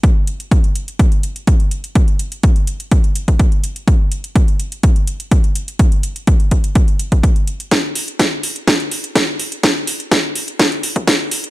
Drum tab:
HH |x-xxxxxxxxxxxxxx|xxxxxxxxxxxxxxxx|x-xxxxxxxxxxxxxx|xxxxxxxxxxxxxxxx|
SD |----------------|----------------|----------------|----------------|
BD |o---o---o---o---|o---o---o--oo---|o---o---o---o---|o---o-o-o--oo---|

HH |x-oxx-oxxxoxx-ox|x-oxx-oxxxoxx-ox|
SD |o---o---o---o---|o---o---o---o---|
BD |o---o---o---o---|o---o---o--oo---|